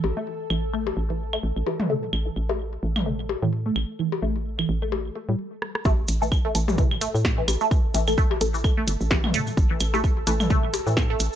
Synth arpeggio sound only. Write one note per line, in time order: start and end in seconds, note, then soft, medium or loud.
0.17 0.21 A3 loud
0.50 0.54 E3 medium
0.74 0.79 A3 loud
1.10 1.13 E3 medium
1.33 1.38 A3 medium
1.67 1.70 E3 medium
1.90 1.95 A3 medium
2.26 2.29 E3 medium
2.49 2.54 A3 loud
2.83 2.86 E3 medium
3.06 3.12 A3 loud
3.42 3.45 E3 medium
3.66 3.70 A3 medium
3.99 4.03 E3 medium
4.22 4.28 A3 loud
4.59 4.61 E3 medium
4.82 4.86 A3 loud
5.16 5.19 A3 medium
5.29 5.31 G3 medium
5.85 5.91 A3 loud
6.22 6.24 E3 medium
6.45 6.49 A3 loud
6.78 6.82 E3 medium
7.01 7.07 A3 loud
7.38 7.40 E3 medium
7.61 7.65 A3 loud
7.94 7.98 E3 medium
8.18 8.23 A3 loud
8.54 8.57 E3 medium
8.77 8.82 A3 loud
9.11 9.14 E3 medium
9.34 9.40 A3 loud
9.71 9.73 E3 medium
9.94 9.98 A3 loud
10.27 10.30 E3 medium
10.50 10.56 A3 loud
10.87 10.89 E3 medium
11.10 11.14 A3 loud